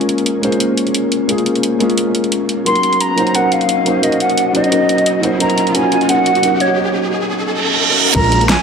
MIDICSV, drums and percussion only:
0, 0, Header, 1, 2, 480
1, 0, Start_track
1, 0, Tempo, 342857
1, 1806, Time_signature, 4, 2, 24, 8
1, 12075, End_track
2, 0, Start_track
2, 0, Title_t, "Drums"
2, 14, Note_on_c, 9, 42, 37
2, 125, Note_off_c, 9, 42, 0
2, 125, Note_on_c, 9, 42, 66
2, 253, Note_off_c, 9, 42, 0
2, 253, Note_on_c, 9, 42, 38
2, 365, Note_off_c, 9, 42, 0
2, 365, Note_on_c, 9, 42, 87
2, 505, Note_off_c, 9, 42, 0
2, 605, Note_on_c, 9, 42, 67
2, 732, Note_off_c, 9, 42, 0
2, 732, Note_on_c, 9, 42, 37
2, 844, Note_off_c, 9, 42, 0
2, 844, Note_on_c, 9, 42, 93
2, 984, Note_off_c, 9, 42, 0
2, 1085, Note_on_c, 9, 42, 69
2, 1213, Note_off_c, 9, 42, 0
2, 1213, Note_on_c, 9, 42, 36
2, 1323, Note_off_c, 9, 42, 0
2, 1323, Note_on_c, 9, 42, 98
2, 1463, Note_off_c, 9, 42, 0
2, 1565, Note_on_c, 9, 42, 66
2, 1705, Note_off_c, 9, 42, 0
2, 1805, Note_on_c, 9, 42, 91
2, 1935, Note_off_c, 9, 42, 0
2, 1935, Note_on_c, 9, 42, 34
2, 2046, Note_off_c, 9, 42, 0
2, 2046, Note_on_c, 9, 42, 63
2, 2177, Note_off_c, 9, 42, 0
2, 2177, Note_on_c, 9, 42, 36
2, 2287, Note_off_c, 9, 42, 0
2, 2287, Note_on_c, 9, 42, 93
2, 2427, Note_off_c, 9, 42, 0
2, 2526, Note_on_c, 9, 42, 66
2, 2655, Note_off_c, 9, 42, 0
2, 2655, Note_on_c, 9, 42, 36
2, 2765, Note_off_c, 9, 42, 0
2, 2765, Note_on_c, 9, 42, 93
2, 2905, Note_off_c, 9, 42, 0
2, 3005, Note_on_c, 9, 42, 63
2, 3135, Note_off_c, 9, 42, 0
2, 3135, Note_on_c, 9, 42, 37
2, 3246, Note_off_c, 9, 42, 0
2, 3246, Note_on_c, 9, 42, 90
2, 3386, Note_off_c, 9, 42, 0
2, 3486, Note_on_c, 9, 42, 63
2, 3626, Note_off_c, 9, 42, 0
2, 3727, Note_on_c, 9, 42, 87
2, 3857, Note_off_c, 9, 42, 0
2, 3857, Note_on_c, 9, 42, 36
2, 3967, Note_off_c, 9, 42, 0
2, 3967, Note_on_c, 9, 42, 58
2, 4096, Note_off_c, 9, 42, 0
2, 4096, Note_on_c, 9, 42, 36
2, 4207, Note_off_c, 9, 42, 0
2, 4207, Note_on_c, 9, 42, 89
2, 4347, Note_off_c, 9, 42, 0
2, 4446, Note_on_c, 9, 42, 62
2, 4574, Note_off_c, 9, 42, 0
2, 4574, Note_on_c, 9, 42, 35
2, 4684, Note_off_c, 9, 42, 0
2, 4684, Note_on_c, 9, 42, 93
2, 4824, Note_off_c, 9, 42, 0
2, 4925, Note_on_c, 9, 42, 65
2, 5053, Note_off_c, 9, 42, 0
2, 5053, Note_on_c, 9, 42, 34
2, 5164, Note_off_c, 9, 42, 0
2, 5164, Note_on_c, 9, 42, 88
2, 5304, Note_off_c, 9, 42, 0
2, 5404, Note_on_c, 9, 42, 64
2, 5544, Note_off_c, 9, 42, 0
2, 5644, Note_on_c, 9, 42, 90
2, 5772, Note_off_c, 9, 42, 0
2, 5772, Note_on_c, 9, 42, 37
2, 5885, Note_off_c, 9, 42, 0
2, 5885, Note_on_c, 9, 42, 58
2, 6013, Note_off_c, 9, 42, 0
2, 6013, Note_on_c, 9, 42, 35
2, 6125, Note_off_c, 9, 42, 0
2, 6125, Note_on_c, 9, 42, 83
2, 6265, Note_off_c, 9, 42, 0
2, 6366, Note_on_c, 9, 42, 64
2, 6495, Note_off_c, 9, 42, 0
2, 6495, Note_on_c, 9, 42, 35
2, 6608, Note_off_c, 9, 42, 0
2, 6608, Note_on_c, 9, 42, 89
2, 6748, Note_off_c, 9, 42, 0
2, 6849, Note_on_c, 9, 42, 66
2, 6976, Note_off_c, 9, 42, 0
2, 6976, Note_on_c, 9, 42, 35
2, 7086, Note_off_c, 9, 42, 0
2, 7086, Note_on_c, 9, 42, 88
2, 7226, Note_off_c, 9, 42, 0
2, 7327, Note_on_c, 9, 42, 63
2, 7467, Note_off_c, 9, 42, 0
2, 7565, Note_on_c, 9, 42, 91
2, 7694, Note_off_c, 9, 42, 0
2, 7694, Note_on_c, 9, 42, 36
2, 7806, Note_off_c, 9, 42, 0
2, 7806, Note_on_c, 9, 42, 64
2, 7936, Note_off_c, 9, 42, 0
2, 7936, Note_on_c, 9, 42, 36
2, 8045, Note_off_c, 9, 42, 0
2, 8045, Note_on_c, 9, 42, 92
2, 8185, Note_off_c, 9, 42, 0
2, 8286, Note_on_c, 9, 42, 62
2, 8416, Note_off_c, 9, 42, 0
2, 8416, Note_on_c, 9, 42, 34
2, 8526, Note_off_c, 9, 42, 0
2, 8526, Note_on_c, 9, 42, 92
2, 8666, Note_off_c, 9, 42, 0
2, 8765, Note_on_c, 9, 42, 69
2, 8894, Note_off_c, 9, 42, 0
2, 8894, Note_on_c, 9, 42, 37
2, 9005, Note_off_c, 9, 42, 0
2, 9005, Note_on_c, 9, 42, 93
2, 9145, Note_off_c, 9, 42, 0
2, 9245, Note_on_c, 9, 42, 63
2, 9385, Note_off_c, 9, 42, 0
2, 11405, Note_on_c, 9, 36, 118
2, 11406, Note_on_c, 9, 42, 99
2, 11406, Note_on_c, 9, 49, 97
2, 11536, Note_off_c, 9, 42, 0
2, 11536, Note_on_c, 9, 42, 39
2, 11545, Note_off_c, 9, 36, 0
2, 11546, Note_off_c, 9, 49, 0
2, 11647, Note_off_c, 9, 42, 0
2, 11647, Note_on_c, 9, 42, 65
2, 11775, Note_off_c, 9, 42, 0
2, 11775, Note_on_c, 9, 42, 39
2, 11886, Note_off_c, 9, 42, 0
2, 11886, Note_on_c, 9, 38, 124
2, 11886, Note_on_c, 9, 42, 101
2, 12026, Note_off_c, 9, 38, 0
2, 12026, Note_off_c, 9, 42, 0
2, 12075, End_track
0, 0, End_of_file